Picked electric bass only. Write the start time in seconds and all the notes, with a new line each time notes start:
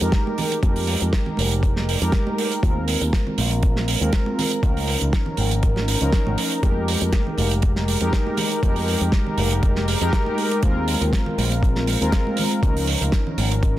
0.02 F2
0.63 F2
1.02 F2
1.38 F1
2.02 F2
2.63 D#2
3.02 D#2
3.38 A#1
4.01 D#2
4.63 C#2
5.02 C#2
5.38 G#1
6.02 C#2
6.27 G#1
6.63 F2
7.02 F2
7.38 F1
8.01 F2
8.63 F2
9.01 F2
9.38 F1
10.01 F2
10.63 D#2
11.01 D#2
11.38 A#1
12.02 D#2
12.63 C#2
13.01 C#2
13.38 G#1